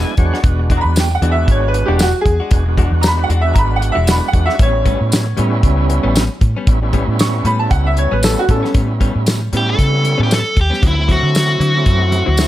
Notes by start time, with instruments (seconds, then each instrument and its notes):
Already playing: tonewheel organ G#3 B3 D4 E4 G#5
0.08 muted clean electric guitar stroke
0.17 fingered electric bass E2, tonewheel organ G#3 B3 D4 F#4 C#5, muted clean electric guitar stroke, kick, closed hi-hat
0.34 clean electric guitar G#3 D4 F#4, snare
0.43 fingered electric bass E1, tonewheel organ G#3 B3 D4 F#4, kick, closed hi-hat
0.59 muted clean electric guitar stroke
0.70 clean electric guitar E3 G#3 D4 F#4, kick, closed hi-hat
0.77 upright piano A#5
0.81 fingered electric bass E2, upright piano B5, muted clean electric guitar stroke
0.96 upright piano G5, snare, closed hi-hat, tambourine
1.11 upright piano F#5, muted clean electric guitar stroke
1.21 fingered electric bass E2, clean electric guitar E3 G#3 D4 F#4, tonewheel organ G#3 B3 D4 F#4, closed hi-hat
1.31 upright piano E5
1.37 muted clean electric guitar stroke
1.48 fingered electric bass G#1, upright piano C#5, muted clean electric guitar stroke, kick, closed hi-hat
1.68 upright piano B4
1.74 muted clean electric guitar stroke, closed hi-hat
1.86 fingered electric bass E1, clean electric guitar E3 G#3 D4 F#4, upright piano G4
1.99 clean electric guitar E3 G#3 D4 F#4, upright piano F#4, snare, closed hi-hat, tambourine
2.14 muted clean electric guitar stroke
2.21 upright piano G#4
2.26 fingered electric bass E2, muted clean electric guitar stroke, kick, closed hi-hat
2.40 clean electric guitar G#3 D4 F#4
2.51 fingered electric bass E1, tonewheel organ G#3 B3 D4 F#4, kick, closed hi-hat
2.66 tonewheel organ G#3 B3 D4 F#4, muted clean electric guitar stroke
2.77 clean electric guitar E3 G#3 D4 F#4, kick, closed hi-hat
2.91 fingered electric bass E2, muted clean electric guitar stroke
3.01 upright piano A#5, snare, closed hi-hat, tambourine
3.07 upright piano B5
3.19 muted clean electric guitar stroke
3.24 upright piano F#5
3.29 fingered electric bass E2, clean electric guitar E3 G#3 D4 F#4, closed hi-hat
3.41 tonewheel organ G#3 B3 D4, upright piano E5
3.46 tonewheel organ F#4
3.54 fingered electric bass G#1, upright piano A#5, muted clean electric guitar stroke, kick, closed hi-hat
3.58 upright piano B5
3.76 upright piano F#5
3.81 muted clean electric guitar stroke, closed hi-hat
3.92 clean electric guitar D4 F#4, upright piano E5
3.96 fingered electric bass E1, clean electric guitar E3 G#3
4.06 clean electric guitar E3 G#3 D4 F#4, tonewheel organ G#3 B3 D4 F#4, snare, closed hi-hat, tambourine
4.11 upright piano B5
4.20 muted clean electric guitar stroke
4.28 upright piano F#5, muted clean electric guitar stroke
4.33 fingered electric bass E2, tonewheel organ G#3 B3 D4 F#4, kick, closed hi-hat
4.46 clean electric guitar G#3 D4 F#4, upright piano E5, snare
4.59 fingered electric bass A1, clean electric guitar A2 G3 B3 C#4, tonewheel organ G3 B3 C#4 E4, upright piano C#5, kick, closed hi-hat
4.73 muted clean electric guitar stroke
4.85 clean electric guitar A2 G3 B3 C#4, kick, closed hi-hat
5.00 fingered electric bass A2, muted clean electric guitar stroke
5.12 snare, closed hi-hat, tambourine
5.26 muted clean electric guitar stroke
5.37 clean electric guitar A2 G3 B3 C#4, fingered electric bass A2, tonewheel organ G3 B3 C#4 E4, closed hi-hat
5.63 fingered electric bass C#2, muted clean electric guitar stroke, kick, closed hi-hat
5.89 muted clean electric guitar stroke, closed hi-hat
6.03 fingered electric bass A1, clean electric guitar A2 G3 B3 C#4
6.15 clean electric guitar A2 G3 B3 C#4, snare, closed hi-hat, tambourine
6.29 muted clean electric guitar stroke
6.41 fingered electric bass A2, muted clean electric guitar stroke, kick, closed hi-hat
6.57 clean electric guitar G3 B3 C#4
6.67 fingered electric bass A1, tonewheel organ G3 B3 C#4 E4, kick, closed hi-hat
6.82 tonewheel organ G3 B3 C#4 E4, muted clean electric guitar stroke
6.93 clean electric guitar A2 G3 B3 C#4, kick, closed hi-hat
7.08 fingered electric bass A2, muted clean electric guitar stroke
7.19 upright piano C#6, snare, closed hi-hat, tambourine
7.34 muted clean electric guitar stroke
7.45 fingered electric bass A2, clean electric guitar A2 G3 B3 C#4, upright piano B5, closed hi-hat
7.59 tonewheel organ G3 B3 C#4 E4, upright piano A5, muted clean electric guitar stroke
7.71 fingered electric bass C#2, upright piano F#5, muted clean electric guitar stroke, kick, closed hi-hat
7.86 upright piano E5
7.97 upright piano C#5, muted clean electric guitar stroke, closed hi-hat
8.11 fingered electric bass A1, clean electric guitar A2 G3 B3 C#4, upright piano B4
8.22 clean electric guitar A2 G3 B3 C#4, tonewheel organ G3 B3 C#4 E4, upright piano A4, snare, closed hi-hat, tambourine
8.38 upright piano F#4, muted clean electric guitar stroke
8.49 fingered electric bass A2, tonewheel organ G3 B3 C#4 E4, upright piano C#4 A4, muted clean electric guitar stroke, kick, closed hi-hat
8.63 clean electric guitar G3 B3 C#4, snare
8.74 clean electric guitar A2 G3 B3 C#4, fingered electric bass A2, tonewheel organ G3 B3 C#4 E4, kick, closed hi-hat
8.89 muted clean electric guitar stroke
9.00 clean electric guitar A2 G3 B3 C#4, kick, closed hi-hat
9.15 fingered electric bass A2, muted clean electric guitar stroke
9.26 snare, closed hi-hat, tambourine
9.41 muted clean electric guitar stroke
9.53 clean electric guitar A2 G3 B3 C#4, fingered electric bass A2, tonewheel organ G3 B3 C#4 E4, closed hi-hat
9.57 lead electric guitar G4
9.67 lead electric guitar A4, muted clean electric guitar stroke
9.78 fingered electric bass C#3, muted clean electric guitar stroke, kick, closed hi-hat
10.04 muted clean electric guitar stroke, closed hi-hat
10.18 clean electric guitar A2 G3 B3 C#4, fingered electric bass A2
10.23 lead electric guitar G4
10.29 clean electric guitar A2 G3 B3 C#4, snare, closed hi-hat, tambourine
10.34 lead electric guitar A4
10.44 muted clean electric guitar stroke
10.56 fingered electric bass D#2, muted clean electric guitar stroke, kick, closed hi-hat
10.61 lead electric guitar G4
10.70 clean electric guitar G3 B3 C#4, snare
10.81 fingered electric bass D2, clean electric guitar D3 F#3 C4 E4, tonewheel organ F#3 A3 C4 E4, kick, closed hi-hat
10.87 lead electric guitar E4
10.96 tonewheel organ F#3 A3 C4 E4, muted clean electric guitar stroke
11.08 clean electric guitar D3 F#3 C4 E4, kick, snare, closed hi-hat
11.12 lead electric guitar F#4
11.23 fingered electric bass D3, muted clean electric guitar stroke
11.35 snare, closed hi-hat, tambourine
11.48 muted clean electric guitar stroke
11.60 clean electric guitar D3 F#3 C4 E4, fingered electric bass D3, closed hi-hat
11.75 tonewheel organ F#3 A3 C4 E4, muted clean electric guitar stroke
11.85 fingered electric bass F#2, muted clean electric guitar stroke, kick, closed hi-hat
12.12 muted clean electric guitar stroke, closed hi-hat
12.26 fingered electric bass D2, clean electric guitar D3 F#3 C4 E4
12.37 clean electric guitar D3 F#3 C4 E4, tonewheel organ F#3 A3 C4 E4, snare, closed hi-hat, tambourine